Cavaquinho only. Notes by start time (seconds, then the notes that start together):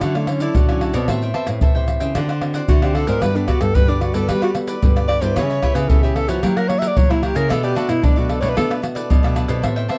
0.01 F#4 A4 C#5 D5
0.15 A4 C#5 D5
0.28 muted cavaquinho stroke
0.41 A4 C#5 D5
0.69 A4 C#5 D5
0.81 F#4 A4 C#5 D5
0.94 A4 C#5 D5
1.09 A4 C5 E5 G5
1.22 C5 E5 G5
1.34 A4 C5 E5 G5
1.47 muted cavaquinho stroke
1.62 A4 C5 E5 G5
1.75 C5 E5 G5
2.00 C5 E5 G5
2.16 D4 C5 D5 F#5
2.29 C5 D5 F#5
2.42 muted cavaquinho stroke
2.55 C5 D5 F#5
2.83 C5 D5 F#5
2.95 D4 C5 D5 F#5
3.07 C5 D5 F#5
3.22 F#4 G4 B4 D5
3.35 G4 B4 D5
3.48 F#4 G4 B4 D5
3.60 muted cavaquinho stroke
3.75 F#4 G4 B4 D5
3.88 G4 B4 D5
4.14 G4 B4 D5
4.28 F#4 G4 B4 D5
4.42 G4 B4 D5
4.55 muted cavaquinho stroke
4.67 G4 B4 D5
4.96 G4 B4 D5
5.08 F#4 G4 B4 D5
5.22 G4 B4 D5
5.36 G4 B4 C#5 E5
5.50 B4 C#5 E5
5.62 G4 B4 C#5 E5
5.75 muted cavaquinho stroke
5.90 G4 B4 C#5 E5
6.03 B4 C#5 E5
6.28 B4 C#5 E5
6.42 E4 A#4 C#5 F#5
6.57 A#4 C#5 F#5
6.69 muted cavaquinho stroke
6.82 A#4 C#5 F#5
7.10 A#4 C#5 F#5
7.22 E4 A#4 C#5 F#5
7.35 A#4 C#5 F#5
7.49 D4 A4 B4 D5
7.63 A4 B4 D5
7.75 D4 A4 B4 D5
7.88 muted cavaquinho stroke
8.02 D4 A4 B4 D5
8.16 A4 B4 D5
8.41 A4 B4 D5
8.55 D4 A4 B4 D5
8.69 A4 B4 D5
8.82 muted cavaquinho stroke
8.95 A4 B4 D5
9.23 A4 B4 D5
9.35 D4 A4 B4 D5
9.48 A4 B4 D5
9.62 A4 C5 E5 G5
9.76 C5 E5 G5
9.88 A4 C5 E5 G5